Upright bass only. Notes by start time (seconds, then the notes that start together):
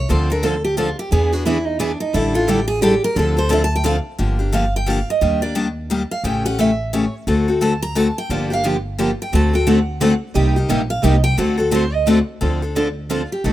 0.10 D2
1.12 E2
2.14 A1
3.16 D2
4.19 G1
5.21 D#2
6.24 A1
7.27 D2
8.30 G1
9.33 D2
10.35 C2
10.70 A#1
11.04 C2
11.38 D2
12.42 D2
13.44 B1